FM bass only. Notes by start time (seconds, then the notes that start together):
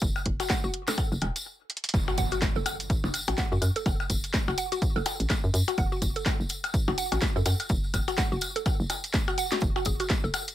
0.02 F#1
0.26 F#1
0.64 F#1
1.12 F#1
1.22 E1
1.94 F#1
2.18 F#1
2.56 F#1
3.04 F#1
3.28 A1
3.52 F#2
3.62 F#2
3.86 F#1
4.10 F#1
4.48 F#1
4.96 F#1
5.20 A1
5.44 F#2
5.54 F#2
5.78 F#1
6.02 F#1
6.40 F#1
6.88 F#1
7.12 A1
7.36 F#2
7.46 F#2
7.70 F#1
7.94 F#1
8.32 F#1
8.80 F#1
9.62 F#1
9.86 F#1
10.24 F#1